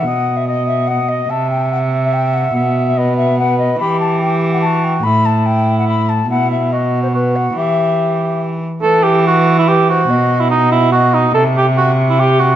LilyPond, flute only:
\new Staff \with { instrumentName = "Flute" } { \time 3/4 \key e \minor \tempo 4 = 144 fis''8. e''16 dis''8 e''8 fis''8 dis''8 | a''8 g''8 fis''8. e''16 g''8 fis''8~ | fis''8. e''16 dis''8 e''8 fis''8 dis''8 | b''8 a''8 g''8. fis''16 a''8 g''8 |
b''8 a''8 g''8. fis''16 b''8 a''8 | fis''8 e''8 dis''8. c''16 b'8 fis''8 | e''2 r4 | b'2 b'8 c''8 |
dis''4 dis''4 dis''4 | e''2. | }